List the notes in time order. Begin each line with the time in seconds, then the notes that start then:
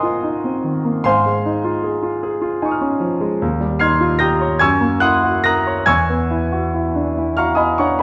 Already playing: G#2 A#3 D#4 F4 A#4 C5 D#5 F5 F#5 G#5 A#5 C6 C#6 D#6 F6 F#6
0.03 F4
0.23 D#4
0.44 C4
0.64 D#3
0.84 A#3
1.04 G#2 C5 F5 G#5 C6
1.26 G#3
1.46 D#4
1.64 F4
1.84 G#4
2.03 F4
2.23 G#4
2.42 F4
2.62 D#4 G#5 C#6
2.69 D#6 F6
2.81 C#4
3.00 F3
3.21 G#3
3.42 D#2
3.60 G3
3.79 D#4 C6 F6 G#6 C7
4.01 F4
4.19 G4 A#5 D#6 G6 A#6
4.41 C#5
4.59 F#2 G#5 C#6 E6 G#6
4.81 A#3
5.01 E4 F#5 C6 D#6 F#6
5.24 F#4
5.44 A#4 A#5 D#6 F#6 A#6
5.67 C#5
5.86 E2 G#5 C#6 E6 G#6
6.09 B3
6.30 E4
6.52 F#4
6.74 E4
6.95 D4
7.18 E4
7.37 F#4 F5 A#5 C#6 F6
7.55 E4 D#5 G#5 B5 D#6
7.78 D4 C#5 F#5 A#5 C#6
7.99 B5